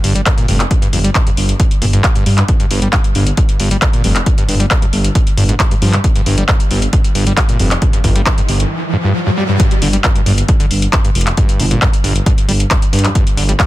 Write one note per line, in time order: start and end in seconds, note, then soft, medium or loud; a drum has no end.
0.04 0.20 G1 medium
0.04 0.13 G2 loud
0.04 open hi-hat loud
0.15 0.21 G3 medium
0.15 closed hi-hat medium
0.26 0.30 G2 medium
0.26 kick loud
0.26 clap loud
0.26 closed hi-hat medium
0.38 0.47 A#2 medium
0.38 closed hi-hat medium
0.48 0.65 F1 loud
0.48 0.58 G2 medium
0.48 open hi-hat loud
0.60 clap medium
0.60 closed hi-hat medium
0.71 kick loud
0.71 closed hi-hat medium
0.82 0.88 G2 medium
0.82 closed hi-hat medium
0.93 1.09 G1 loud
0.93 0.99 F2 loud
0.93 open hi-hat loud
1.04 1.10 G3 medium
1.04 closed hi-hat medium
1.15 kick loud
1.15 clap loud
1.15 closed hi-hat medium
1.26 1.30 G2 loud
1.26 closed hi-hat soft
1.37 1.54 G1 medium
1.37 open hi-hat loud
1.49 closed hi-hat medium
1.60 kick loud
1.60 closed hi-hat medium
1.71 closed hi-hat medium
1.82 1.98 G1 loud
1.82 1.86 A#2 loud
1.82 open hi-hat loud
1.93 2.02 G2 medium
1.93 closed hi-hat soft
2.04 kick loud
2.04 clap loud
2.04 closed hi-hat medium
2.15 2.24 G2 loud
2.15 closed hi-hat soft
2.26 2.42 G2 loud
2.26 2.30 G2 medium
2.26 open hi-hat loud
2.38 2.44 G2 medium
2.38 clap medium
2.38 closed hi-hat medium
2.48 kick loud
2.48 closed hi-hat medium
2.60 2.66 G2 medium
2.60 closed hi-hat medium
2.71 2.87 G1 loud
2.71 2.80 G2 loud
2.71 open hi-hat loud
2.82 2.88 G3 medium
2.82 closed hi-hat soft
2.93 2.97 G2 medium
2.93 kick loud
2.93 clap loud
2.93 closed hi-hat soft
3.04 closed hi-hat soft
3.15 3.31 G1 medium
3.15 3.25 G2 medium
3.15 open hi-hat medium
3.27 closed hi-hat soft
3.37 kick loud
3.37 closed hi-hat medium
3.49 closed hi-hat soft
3.60 3.76 G1 medium
3.60 3.69 G2 loud
3.60 open hi-hat loud
3.71 3.77 G3 medium
3.71 closed hi-hat medium
3.82 3.86 G2 medium
3.82 kick loud
3.82 clap loud
3.82 closed hi-hat medium
3.93 4.02 A#2 medium
3.93 closed hi-hat soft
4.04 4.20 F1 loud
4.04 4.14 G2 medium
4.04 open hi-hat loud
4.16 clap medium
4.16 closed hi-hat medium
4.26 kick loud
4.26 closed hi-hat medium
4.38 4.44 G2 medium
4.38 closed hi-hat medium
4.48 4.65 G1 loud
4.48 4.55 G2 medium
4.48 open hi-hat loud
4.60 4.66 G3 medium
4.60 closed hi-hat soft
4.71 kick loud
4.71 clap loud
4.71 closed hi-hat medium
4.82 4.86 G2 loud
4.82 closed hi-hat soft
4.93 5.09 G1 medium
4.93 open hi-hat medium
5.04 closed hi-hat medium
5.15 kick loud
5.15 closed hi-hat medium
5.27 closed hi-hat medium
5.37 5.54 G1 loud
5.37 5.44 G2 loud
5.37 open hi-hat loud
5.49 5.55 G#2 loud
5.49 closed hi-hat soft
5.60 kick loud
5.60 clap loud
5.60 closed hi-hat medium
5.71 5.75 G2 loud
5.71 closed hi-hat soft
5.82 5.98 G2 loud
5.82 5.95 F3 medium
5.82 open hi-hat medium
5.93 5.97 G2 loud
5.93 clap medium
5.93 closed hi-hat medium
6.04 kick loud
6.04 closed hi-hat medium
6.04 riser medium
6.16 6.21 G2 medium
6.16 closed hi-hat medium
6.26 6.42 G1 loud
6.26 6.36 G2 loud
6.26 open hi-hat loud
6.38 6.44 G3 medium
6.38 closed hi-hat medium
6.49 6.52 G2 medium
6.49 kick loud
6.49 clap loud
6.49 closed hi-hat medium
6.60 closed hi-hat medium
6.71 6.87 G1 medium
6.71 6.80 G2 medium
6.71 open hi-hat medium
6.82 closed hi-hat medium
6.93 kick loud
6.93 closed hi-hat medium
7.04 closed hi-hat medium
7.15 7.31 G1 medium
7.15 7.25 G2 loud
7.15 open hi-hat loud
7.27 7.33 G3 medium
7.27 closed hi-hat medium
7.37 7.41 G2 medium
7.37 kick loud
7.37 clap loud
7.37 closed hi-hat medium
7.49 7.58 A#2 medium
7.49 closed hi-hat soft
7.59 7.76 F1 loud
7.59 7.69 G2 medium
7.59 open hi-hat medium
7.71 clap medium
7.71 closed hi-hat medium
7.82 kick loud
7.82 closed hi-hat medium
7.93 7.99 G2 medium
7.93 closed hi-hat medium
8.04 8.20 G1 loud
8.04 8.10 G2 medium
8.04 kick medium
8.04 open hi-hat loud
8.16 8.22 G3 medium
8.16 closed hi-hat medium
8.26 kick loud
8.26 clap loud
8.26 closed hi-hat medium
8.38 8.41 G2 loud
8.38 closed hi-hat medium
8.49 8.65 G1 medium
8.49 open hi-hat medium
8.60 closed hi-hat medium
8.93 8.97 G2 medium
9.04 9.13 G2 loud
9.27 9.30 G2 loud
9.37 9.44 G3 medium
9.49 9.58 G2 medium
9.60 9.69 G2 medium
9.60 kick loud
9.60 closed hi-hat medium
9.71 closed hi-hat medium
9.82 9.98 G1 loud
9.82 9.88 D3 medium
9.82 open hi-hat loud
9.93 9.97 G3 medium
9.93 closed hi-hat medium
10.04 10.10 G2 medium
10.04 kick loud
10.04 clap loud
10.04 closed hi-hat medium
10.16 10.22 G2 medium
10.16 closed hi-hat medium
10.26 10.42 G1 medium
10.26 10.33 G2 medium
10.26 open hi-hat medium
10.38 closed hi-hat medium
10.48 kick loud
10.48 closed hi-hat medium
10.60 10.66 D3 medium
10.60 closed hi-hat medium
10.71 10.87 G1 medium
10.71 open hi-hat loud
10.82 closed hi-hat medium
10.93 10.99 G2 medium
10.93 kick loud
10.93 clap loud
10.93 closed hi-hat medium
11.04 11.10 G2 medium
11.04 closed hi-hat medium
11.15 11.31 F1 loud
11.15 open hi-hat loud
11.21 closed hi-hat medium
11.27 clap medium
11.27 closed hi-hat medium
11.37 11.61 G2 medium
11.37 kick loud
11.37 closed hi-hat medium
11.49 closed hi-hat medium
11.60 11.76 G1 loud
11.60 11.66 C3 medium
11.60 open hi-hat loud
11.71 11.80 A#2 medium
11.71 closed hi-hat medium
11.82 kick loud
11.82 clap loud
11.82 closed hi-hat medium
11.93 closed hi-hat medium
12.04 12.20 G1 medium
12.04 12.13 G2 medium
12.04 open hi-hat loud
12.16 closed hi-hat medium
12.26 12.33 G2 medium
12.26 kick loud
12.26 closed hi-hat medium
12.38 closed hi-hat medium
12.48 12.65 G1 loud
12.48 12.52 G3 medium
12.48 open hi-hat loud
12.60 closed hi-hat medium
12.71 12.77 G2 medium
12.71 kick loud
12.71 clap loud
12.71 closed hi-hat medium
12.82 closed hi-hat medium
12.93 13.06 G2 medium
12.93 13.09 G2 loud
12.93 open hi-hat loud
12.99 closed hi-hat medium
13.04 13.10 F2 medium
13.04 clap medium
13.04 closed hi-hat medium
13.15 13.25 G2 medium
13.15 kick loud
13.15 closed hi-hat medium
13.27 closed hi-hat medium
13.37 13.54 G1 loud
13.37 13.44 D3 medium
13.37 open hi-hat loud
13.49 13.52 G3 medium
13.49 closed hi-hat medium
13.60 13.66 G2 medium
13.60 kick loud
13.60 clap loud
13.60 closed hi-hat medium